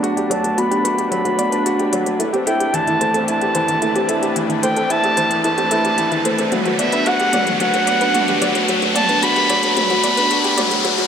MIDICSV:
0, 0, Header, 1, 7, 480
1, 0, Start_track
1, 0, Key_signature, 1, "major"
1, 0, Tempo, 540541
1, 35, Time_signature, 4, 2, 24, 8
1, 9831, End_track
2, 0, Start_track
2, 0, Title_t, "Violin"
2, 0, Program_c, 0, 40
2, 285, Note_on_c, 0, 81, 92
2, 516, Note_on_c, 0, 83, 103
2, 530, Note_off_c, 0, 81, 0
2, 984, Note_off_c, 0, 83, 0
2, 989, Note_on_c, 0, 83, 92
2, 1917, Note_off_c, 0, 83, 0
2, 2188, Note_on_c, 0, 79, 93
2, 2436, Note_on_c, 0, 81, 102
2, 2449, Note_off_c, 0, 79, 0
2, 2915, Note_off_c, 0, 81, 0
2, 2920, Note_on_c, 0, 81, 94
2, 3842, Note_off_c, 0, 81, 0
2, 4112, Note_on_c, 0, 79, 90
2, 4355, Note_on_c, 0, 81, 108
2, 4369, Note_off_c, 0, 79, 0
2, 4823, Note_off_c, 0, 81, 0
2, 4828, Note_on_c, 0, 81, 90
2, 5756, Note_off_c, 0, 81, 0
2, 6033, Note_on_c, 0, 76, 92
2, 6276, Note_on_c, 0, 78, 110
2, 6289, Note_off_c, 0, 76, 0
2, 6755, Note_off_c, 0, 78, 0
2, 6759, Note_on_c, 0, 78, 97
2, 7681, Note_off_c, 0, 78, 0
2, 7954, Note_on_c, 0, 81, 99
2, 8197, Note_on_c, 0, 83, 113
2, 8210, Note_off_c, 0, 81, 0
2, 8670, Note_off_c, 0, 83, 0
2, 8675, Note_on_c, 0, 83, 94
2, 9599, Note_off_c, 0, 83, 0
2, 9831, End_track
3, 0, Start_track
3, 0, Title_t, "Synth arpeggio sound"
3, 0, Program_c, 1, 84
3, 272, Note_on_c, 1, 74, 67
3, 351, Note_off_c, 1, 74, 0
3, 511, Note_on_c, 1, 66, 80
3, 591, Note_off_c, 1, 66, 0
3, 630, Note_on_c, 1, 67, 95
3, 747, Note_off_c, 1, 67, 0
3, 749, Note_on_c, 1, 71, 72
3, 799, Note_off_c, 1, 71, 0
3, 1107, Note_on_c, 1, 66, 69
3, 1225, Note_off_c, 1, 66, 0
3, 1229, Note_on_c, 1, 74, 71
3, 1309, Note_off_c, 1, 74, 0
3, 1351, Note_on_c, 1, 71, 72
3, 1431, Note_off_c, 1, 71, 0
3, 1710, Note_on_c, 1, 74, 67
3, 1790, Note_off_c, 1, 74, 0
3, 1951, Note_on_c, 1, 64, 72
3, 2030, Note_off_c, 1, 64, 0
3, 2069, Note_on_c, 1, 67, 100
3, 2186, Note_off_c, 1, 67, 0
3, 2191, Note_on_c, 1, 69, 73
3, 2240, Note_off_c, 1, 69, 0
3, 2551, Note_on_c, 1, 64, 70
3, 2667, Note_off_c, 1, 64, 0
3, 2671, Note_on_c, 1, 72, 74
3, 2750, Note_off_c, 1, 72, 0
3, 2788, Note_on_c, 1, 69, 74
3, 2869, Note_off_c, 1, 69, 0
3, 3150, Note_on_c, 1, 72, 68
3, 3230, Note_off_c, 1, 72, 0
3, 3392, Note_on_c, 1, 64, 77
3, 3471, Note_off_c, 1, 64, 0
3, 3514, Note_on_c, 1, 67, 108
3, 3629, Note_off_c, 1, 67, 0
3, 3633, Note_on_c, 1, 69, 70
3, 3680, Note_off_c, 1, 69, 0
3, 3991, Note_on_c, 1, 64, 72
3, 4107, Note_off_c, 1, 64, 0
3, 4113, Note_on_c, 1, 72, 73
3, 4192, Note_off_c, 1, 72, 0
3, 4235, Note_on_c, 1, 69, 69
3, 4313, Note_off_c, 1, 69, 0
3, 4592, Note_on_c, 1, 72, 75
3, 4671, Note_off_c, 1, 72, 0
3, 4832, Note_on_c, 1, 64, 85
3, 4911, Note_off_c, 1, 64, 0
3, 4953, Note_on_c, 1, 67, 92
3, 5068, Note_off_c, 1, 67, 0
3, 5072, Note_on_c, 1, 69, 76
3, 5120, Note_off_c, 1, 69, 0
3, 5433, Note_on_c, 1, 64, 75
3, 5548, Note_off_c, 1, 64, 0
3, 5555, Note_on_c, 1, 72, 71
3, 5632, Note_off_c, 1, 72, 0
3, 5671, Note_on_c, 1, 69, 74
3, 5751, Note_off_c, 1, 69, 0
3, 5912, Note_on_c, 1, 66, 67
3, 6027, Note_off_c, 1, 66, 0
3, 6034, Note_on_c, 1, 74, 68
3, 6112, Note_off_c, 1, 74, 0
3, 6152, Note_on_c, 1, 71, 64
3, 6231, Note_off_c, 1, 71, 0
3, 6512, Note_on_c, 1, 74, 70
3, 6591, Note_off_c, 1, 74, 0
3, 6873, Note_on_c, 1, 66, 71
3, 6988, Note_off_c, 1, 66, 0
3, 6992, Note_on_c, 1, 74, 65
3, 7071, Note_off_c, 1, 74, 0
3, 7113, Note_on_c, 1, 71, 68
3, 7192, Note_off_c, 1, 71, 0
3, 7475, Note_on_c, 1, 74, 68
3, 7552, Note_off_c, 1, 74, 0
3, 7833, Note_on_c, 1, 66, 74
3, 7948, Note_off_c, 1, 66, 0
3, 7951, Note_on_c, 1, 74, 75
3, 8031, Note_off_c, 1, 74, 0
3, 8070, Note_on_c, 1, 71, 65
3, 8150, Note_off_c, 1, 71, 0
3, 8434, Note_on_c, 1, 74, 78
3, 8512, Note_off_c, 1, 74, 0
3, 8793, Note_on_c, 1, 66, 68
3, 8908, Note_off_c, 1, 66, 0
3, 8912, Note_on_c, 1, 74, 68
3, 8991, Note_off_c, 1, 74, 0
3, 9033, Note_on_c, 1, 71, 69
3, 9111, Note_off_c, 1, 71, 0
3, 9389, Note_on_c, 1, 74, 72
3, 9470, Note_off_c, 1, 74, 0
3, 9753, Note_on_c, 1, 66, 80
3, 9831, Note_off_c, 1, 66, 0
3, 9831, End_track
4, 0, Start_track
4, 0, Title_t, "String section"
4, 0, Program_c, 2, 48
4, 0, Note_on_c, 2, 57, 64
4, 0, Note_on_c, 2, 62, 71
4, 0, Note_on_c, 2, 71, 67
4, 5782, Note_off_c, 2, 57, 0
4, 5793, Note_on_c, 2, 57, 89
4, 9831, Note_off_c, 2, 57, 0
4, 9831, Note_off_c, 2, 62, 0
4, 9831, Note_off_c, 2, 71, 0
4, 9831, End_track
5, 0, Start_track
5, 0, Title_t, "Felt piano"
5, 0, Program_c, 3, 0
5, 0, Control_c, 3, 64, 127
5, 0, Note_on_c, 3, 54, 68
5, 0, Note_on_c, 3, 59, 63
5, 0, Note_on_c, 3, 62, 67
5, 0, Note_on_c, 3, 66, 86
5, 0, Note_on_c, 3, 67, 69
5, 26, Note_off_c, 3, 66, 0
5, 26, Note_on_c, 3, 66, 92
5, 144, Note_off_c, 3, 66, 0
5, 148, Note_off_c, 3, 67, 0
5, 148, Note_on_c, 3, 67, 71
5, 265, Note_off_c, 3, 67, 0
5, 266, Note_off_c, 3, 54, 0
5, 266, Note_on_c, 3, 54, 90
5, 374, Note_off_c, 3, 54, 0
5, 388, Note_on_c, 3, 54, 68
5, 460, Note_off_c, 3, 54, 0
5, 507, Note_off_c, 3, 59, 0
5, 507, Note_on_c, 3, 59, 77
5, 625, Note_off_c, 3, 59, 0
5, 629, Note_off_c, 3, 62, 0
5, 629, Note_on_c, 3, 62, 67
5, 746, Note_off_c, 3, 62, 0
5, 750, Note_on_c, 3, 66, 87
5, 866, Note_off_c, 3, 66, 0
5, 870, Note_on_c, 3, 67, 64
5, 986, Note_off_c, 3, 67, 0
5, 987, Note_on_c, 3, 54, 94
5, 1097, Note_off_c, 3, 54, 0
5, 1110, Note_on_c, 3, 54, 66
5, 1181, Note_off_c, 3, 54, 0
5, 1232, Note_on_c, 3, 59, 70
5, 1347, Note_off_c, 3, 59, 0
5, 1350, Note_on_c, 3, 62, 75
5, 1467, Note_off_c, 3, 62, 0
5, 1473, Note_on_c, 3, 66, 84
5, 1588, Note_off_c, 3, 66, 0
5, 1593, Note_on_c, 3, 67, 72
5, 1708, Note_off_c, 3, 67, 0
5, 1712, Note_on_c, 3, 54, 95
5, 1816, Note_off_c, 3, 54, 0
5, 1829, Note_on_c, 3, 54, 74
5, 1900, Note_off_c, 3, 54, 0
5, 1947, Note_on_c, 3, 57, 78
5, 1964, Control_c, 3, 64, 0
5, 2065, Note_off_c, 3, 57, 0
5, 2070, Note_on_c, 3, 60, 74
5, 2134, Control_c, 3, 64, 127
5, 2187, Note_off_c, 3, 60, 0
5, 2190, Note_on_c, 3, 64, 96
5, 2307, Note_off_c, 3, 64, 0
5, 2312, Note_on_c, 3, 67, 68
5, 2427, Note_off_c, 3, 67, 0
5, 2429, Note_on_c, 3, 52, 96
5, 2538, Note_off_c, 3, 52, 0
5, 2551, Note_on_c, 3, 52, 74
5, 2622, Note_off_c, 3, 52, 0
5, 2672, Note_on_c, 3, 57, 72
5, 2787, Note_off_c, 3, 57, 0
5, 2794, Note_on_c, 3, 60, 62
5, 2908, Note_off_c, 3, 60, 0
5, 2913, Note_on_c, 3, 64, 88
5, 3028, Note_off_c, 3, 64, 0
5, 3034, Note_on_c, 3, 67, 71
5, 3149, Note_off_c, 3, 67, 0
5, 3153, Note_on_c, 3, 52, 93
5, 3262, Note_off_c, 3, 52, 0
5, 3276, Note_on_c, 3, 52, 70
5, 3344, Note_off_c, 3, 52, 0
5, 3395, Note_on_c, 3, 57, 73
5, 3509, Note_off_c, 3, 57, 0
5, 3514, Note_on_c, 3, 60, 68
5, 3629, Note_off_c, 3, 60, 0
5, 3633, Note_on_c, 3, 64, 94
5, 3748, Note_off_c, 3, 64, 0
5, 3750, Note_on_c, 3, 67, 75
5, 3866, Note_off_c, 3, 67, 0
5, 3872, Note_on_c, 3, 52, 89
5, 3979, Note_off_c, 3, 52, 0
5, 3993, Note_on_c, 3, 52, 71
5, 4062, Note_off_c, 3, 52, 0
5, 4114, Note_on_c, 3, 57, 70
5, 4229, Note_off_c, 3, 57, 0
5, 4231, Note_on_c, 3, 60, 67
5, 4347, Note_off_c, 3, 60, 0
5, 4352, Note_on_c, 3, 64, 101
5, 4467, Note_off_c, 3, 64, 0
5, 4473, Note_on_c, 3, 67, 74
5, 4588, Note_off_c, 3, 67, 0
5, 4592, Note_on_c, 3, 52, 94
5, 4698, Note_off_c, 3, 52, 0
5, 4711, Note_on_c, 3, 52, 69
5, 4781, Note_off_c, 3, 52, 0
5, 4832, Note_on_c, 3, 57, 71
5, 4947, Note_off_c, 3, 57, 0
5, 4952, Note_on_c, 3, 60, 68
5, 5067, Note_off_c, 3, 60, 0
5, 5074, Note_on_c, 3, 64, 96
5, 5188, Note_off_c, 3, 64, 0
5, 5193, Note_on_c, 3, 67, 68
5, 5308, Note_off_c, 3, 67, 0
5, 5311, Note_on_c, 3, 52, 85
5, 5418, Note_off_c, 3, 52, 0
5, 5432, Note_on_c, 3, 52, 74
5, 5502, Note_off_c, 3, 52, 0
5, 5549, Note_on_c, 3, 57, 68
5, 5666, Note_off_c, 3, 57, 0
5, 5671, Note_on_c, 3, 60, 72
5, 5787, Note_off_c, 3, 60, 0
5, 5788, Note_on_c, 3, 54, 84
5, 5808, Control_c, 3, 64, 0
5, 5898, Note_off_c, 3, 54, 0
5, 5911, Note_on_c, 3, 54, 67
5, 5981, Note_off_c, 3, 54, 0
5, 5986, Control_c, 3, 64, 127
5, 6031, Note_on_c, 3, 59, 65
5, 6147, Note_off_c, 3, 59, 0
5, 6150, Note_on_c, 3, 62, 62
5, 6267, Note_off_c, 3, 62, 0
5, 6272, Note_on_c, 3, 66, 91
5, 6388, Note_off_c, 3, 66, 0
5, 6394, Note_on_c, 3, 67, 69
5, 6508, Note_off_c, 3, 67, 0
5, 6513, Note_on_c, 3, 54, 91
5, 6621, Note_off_c, 3, 54, 0
5, 6635, Note_on_c, 3, 54, 68
5, 6703, Note_off_c, 3, 54, 0
5, 6755, Note_on_c, 3, 54, 87
5, 6862, Note_off_c, 3, 54, 0
5, 6875, Note_on_c, 3, 54, 65
5, 6943, Note_off_c, 3, 54, 0
5, 6992, Note_on_c, 3, 59, 63
5, 7107, Note_off_c, 3, 59, 0
5, 7114, Note_on_c, 3, 62, 67
5, 7228, Note_off_c, 3, 62, 0
5, 7231, Note_on_c, 3, 66, 84
5, 7347, Note_off_c, 3, 66, 0
5, 7353, Note_on_c, 3, 67, 68
5, 7468, Note_off_c, 3, 67, 0
5, 7474, Note_on_c, 3, 54, 86
5, 7578, Note_off_c, 3, 54, 0
5, 7591, Note_on_c, 3, 54, 73
5, 7661, Note_off_c, 3, 54, 0
5, 7714, Note_on_c, 3, 54, 87
5, 7820, Note_off_c, 3, 54, 0
5, 7833, Note_on_c, 3, 54, 73
5, 7902, Note_off_c, 3, 54, 0
5, 7949, Note_on_c, 3, 59, 72
5, 8066, Note_off_c, 3, 59, 0
5, 8072, Note_on_c, 3, 62, 71
5, 8187, Note_off_c, 3, 62, 0
5, 8192, Note_on_c, 3, 66, 91
5, 8307, Note_off_c, 3, 66, 0
5, 8312, Note_on_c, 3, 67, 68
5, 8427, Note_off_c, 3, 67, 0
5, 8432, Note_on_c, 3, 54, 97
5, 8541, Note_off_c, 3, 54, 0
5, 8555, Note_on_c, 3, 54, 72
5, 8623, Note_off_c, 3, 54, 0
5, 8674, Note_on_c, 3, 54, 94
5, 8783, Note_off_c, 3, 54, 0
5, 8797, Note_on_c, 3, 54, 76
5, 8864, Note_off_c, 3, 54, 0
5, 8914, Note_on_c, 3, 59, 73
5, 9029, Note_off_c, 3, 59, 0
5, 9036, Note_on_c, 3, 62, 74
5, 9149, Note_off_c, 3, 62, 0
5, 9153, Note_on_c, 3, 66, 89
5, 9268, Note_off_c, 3, 66, 0
5, 9272, Note_on_c, 3, 67, 76
5, 9388, Note_off_c, 3, 67, 0
5, 9393, Note_on_c, 3, 54, 97
5, 9497, Note_off_c, 3, 54, 0
5, 9510, Note_on_c, 3, 54, 80
5, 9581, Note_off_c, 3, 54, 0
5, 9629, Note_on_c, 3, 54, 96
5, 9646, Control_c, 3, 64, 0
5, 9737, Note_off_c, 3, 54, 0
5, 9750, Note_on_c, 3, 54, 77
5, 9805, Control_c, 3, 64, 127
5, 9821, Note_off_c, 3, 54, 0
5, 9831, End_track
6, 0, Start_track
6, 0, Title_t, "Riser"
6, 0, Program_c, 4, 103
6, 0, Note_on_c, 4, 60, 69
6, 9831, Note_off_c, 4, 60, 0
6, 9831, End_track
7, 0, Start_track
7, 0, Title_t, "Drums"
7, 34, Note_on_c, 9, 42, 36
7, 123, Note_off_c, 9, 42, 0
7, 153, Note_on_c, 9, 42, 19
7, 242, Note_off_c, 9, 42, 0
7, 275, Note_on_c, 9, 42, 69
7, 364, Note_off_c, 9, 42, 0
7, 394, Note_on_c, 9, 42, 29
7, 482, Note_off_c, 9, 42, 0
7, 515, Note_on_c, 9, 42, 37
7, 604, Note_off_c, 9, 42, 0
7, 635, Note_on_c, 9, 42, 18
7, 724, Note_off_c, 9, 42, 0
7, 755, Note_on_c, 9, 42, 63
7, 844, Note_off_c, 9, 42, 0
7, 874, Note_on_c, 9, 42, 29
7, 963, Note_off_c, 9, 42, 0
7, 993, Note_on_c, 9, 42, 39
7, 1081, Note_off_c, 9, 42, 0
7, 1113, Note_on_c, 9, 42, 20
7, 1201, Note_off_c, 9, 42, 0
7, 1232, Note_on_c, 9, 42, 62
7, 1321, Note_off_c, 9, 42, 0
7, 1353, Note_on_c, 9, 42, 27
7, 1442, Note_off_c, 9, 42, 0
7, 1474, Note_on_c, 9, 42, 39
7, 1563, Note_off_c, 9, 42, 0
7, 1593, Note_on_c, 9, 42, 19
7, 1682, Note_off_c, 9, 42, 0
7, 1712, Note_on_c, 9, 42, 73
7, 1800, Note_off_c, 9, 42, 0
7, 1833, Note_on_c, 9, 42, 31
7, 1922, Note_off_c, 9, 42, 0
7, 1952, Note_on_c, 9, 42, 37
7, 2041, Note_off_c, 9, 42, 0
7, 2075, Note_on_c, 9, 42, 18
7, 2164, Note_off_c, 9, 42, 0
7, 2193, Note_on_c, 9, 42, 69
7, 2282, Note_off_c, 9, 42, 0
7, 2313, Note_on_c, 9, 42, 32
7, 2402, Note_off_c, 9, 42, 0
7, 2432, Note_on_c, 9, 42, 41
7, 2521, Note_off_c, 9, 42, 0
7, 2553, Note_on_c, 9, 42, 20
7, 2641, Note_off_c, 9, 42, 0
7, 2673, Note_on_c, 9, 42, 68
7, 2762, Note_off_c, 9, 42, 0
7, 2791, Note_on_c, 9, 42, 30
7, 2880, Note_off_c, 9, 42, 0
7, 2913, Note_on_c, 9, 42, 39
7, 3002, Note_off_c, 9, 42, 0
7, 3032, Note_on_c, 9, 42, 20
7, 3121, Note_off_c, 9, 42, 0
7, 3150, Note_on_c, 9, 42, 69
7, 3239, Note_off_c, 9, 42, 0
7, 3271, Note_on_c, 9, 42, 29
7, 3360, Note_off_c, 9, 42, 0
7, 3392, Note_on_c, 9, 42, 44
7, 3481, Note_off_c, 9, 42, 0
7, 3512, Note_on_c, 9, 42, 20
7, 3601, Note_off_c, 9, 42, 0
7, 3630, Note_on_c, 9, 42, 73
7, 3719, Note_off_c, 9, 42, 0
7, 3753, Note_on_c, 9, 42, 31
7, 3842, Note_off_c, 9, 42, 0
7, 3872, Note_on_c, 9, 42, 41
7, 3961, Note_off_c, 9, 42, 0
7, 3994, Note_on_c, 9, 42, 21
7, 4083, Note_off_c, 9, 42, 0
7, 4113, Note_on_c, 9, 42, 73
7, 4202, Note_off_c, 9, 42, 0
7, 4231, Note_on_c, 9, 42, 32
7, 4320, Note_off_c, 9, 42, 0
7, 4353, Note_on_c, 9, 42, 42
7, 4442, Note_off_c, 9, 42, 0
7, 4472, Note_on_c, 9, 42, 19
7, 4561, Note_off_c, 9, 42, 0
7, 4592, Note_on_c, 9, 42, 67
7, 4681, Note_off_c, 9, 42, 0
7, 4713, Note_on_c, 9, 42, 32
7, 4801, Note_off_c, 9, 42, 0
7, 4833, Note_on_c, 9, 42, 39
7, 4922, Note_off_c, 9, 42, 0
7, 4953, Note_on_c, 9, 42, 20
7, 5041, Note_off_c, 9, 42, 0
7, 5071, Note_on_c, 9, 42, 73
7, 5160, Note_off_c, 9, 42, 0
7, 5192, Note_on_c, 9, 42, 28
7, 5281, Note_off_c, 9, 42, 0
7, 5309, Note_on_c, 9, 42, 43
7, 5398, Note_off_c, 9, 42, 0
7, 5432, Note_on_c, 9, 42, 20
7, 5521, Note_off_c, 9, 42, 0
7, 5551, Note_on_c, 9, 42, 75
7, 5640, Note_off_c, 9, 42, 0
7, 5669, Note_on_c, 9, 42, 30
7, 5758, Note_off_c, 9, 42, 0
7, 5788, Note_on_c, 9, 42, 35
7, 5788, Note_on_c, 9, 45, 56
7, 5877, Note_off_c, 9, 42, 0
7, 5877, Note_off_c, 9, 45, 0
7, 5909, Note_on_c, 9, 42, 20
7, 5998, Note_off_c, 9, 42, 0
7, 6029, Note_on_c, 9, 42, 70
7, 6118, Note_off_c, 9, 42, 0
7, 6148, Note_on_c, 9, 42, 31
7, 6237, Note_off_c, 9, 42, 0
7, 6270, Note_on_c, 9, 42, 39
7, 6359, Note_off_c, 9, 42, 0
7, 6389, Note_on_c, 9, 42, 19
7, 6478, Note_off_c, 9, 42, 0
7, 6509, Note_on_c, 9, 42, 72
7, 6509, Note_on_c, 9, 45, 56
7, 6598, Note_off_c, 9, 42, 0
7, 6598, Note_off_c, 9, 45, 0
7, 6631, Note_on_c, 9, 42, 29
7, 6720, Note_off_c, 9, 42, 0
7, 6750, Note_on_c, 9, 42, 37
7, 6839, Note_off_c, 9, 42, 0
7, 6870, Note_on_c, 9, 42, 21
7, 6959, Note_off_c, 9, 42, 0
7, 6990, Note_on_c, 9, 42, 69
7, 7079, Note_off_c, 9, 42, 0
7, 7112, Note_on_c, 9, 42, 28
7, 7201, Note_off_c, 9, 42, 0
7, 7233, Note_on_c, 9, 42, 42
7, 7233, Note_on_c, 9, 45, 63
7, 7321, Note_off_c, 9, 42, 0
7, 7321, Note_off_c, 9, 45, 0
7, 7353, Note_on_c, 9, 42, 20
7, 7441, Note_off_c, 9, 42, 0
7, 7474, Note_on_c, 9, 42, 69
7, 7563, Note_off_c, 9, 42, 0
7, 7593, Note_on_c, 9, 42, 32
7, 7682, Note_off_c, 9, 42, 0
7, 7712, Note_on_c, 9, 42, 36
7, 7800, Note_off_c, 9, 42, 0
7, 7834, Note_on_c, 9, 42, 20
7, 7922, Note_off_c, 9, 42, 0
7, 7952, Note_on_c, 9, 42, 69
7, 7952, Note_on_c, 9, 45, 56
7, 8041, Note_off_c, 9, 42, 0
7, 8041, Note_off_c, 9, 45, 0
7, 8072, Note_on_c, 9, 42, 29
7, 8161, Note_off_c, 9, 42, 0
7, 8193, Note_on_c, 9, 42, 37
7, 8281, Note_off_c, 9, 42, 0
7, 8313, Note_on_c, 9, 42, 19
7, 8402, Note_off_c, 9, 42, 0
7, 8432, Note_on_c, 9, 42, 67
7, 8521, Note_off_c, 9, 42, 0
7, 8551, Note_on_c, 9, 42, 28
7, 8640, Note_off_c, 9, 42, 0
7, 8672, Note_on_c, 9, 42, 36
7, 8672, Note_on_c, 9, 45, 57
7, 8761, Note_off_c, 9, 42, 0
7, 8761, Note_off_c, 9, 45, 0
7, 8792, Note_on_c, 9, 42, 20
7, 8881, Note_off_c, 9, 42, 0
7, 8911, Note_on_c, 9, 42, 68
7, 9000, Note_off_c, 9, 42, 0
7, 9033, Note_on_c, 9, 42, 26
7, 9122, Note_off_c, 9, 42, 0
7, 9153, Note_on_c, 9, 42, 41
7, 9241, Note_off_c, 9, 42, 0
7, 9272, Note_on_c, 9, 42, 19
7, 9361, Note_off_c, 9, 42, 0
7, 9392, Note_on_c, 9, 42, 70
7, 9392, Note_on_c, 9, 45, 64
7, 9481, Note_off_c, 9, 42, 0
7, 9481, Note_off_c, 9, 45, 0
7, 9511, Note_on_c, 9, 42, 30
7, 9600, Note_off_c, 9, 42, 0
7, 9632, Note_on_c, 9, 42, 38
7, 9720, Note_off_c, 9, 42, 0
7, 9752, Note_on_c, 9, 42, 19
7, 9831, Note_off_c, 9, 42, 0
7, 9831, End_track
0, 0, End_of_file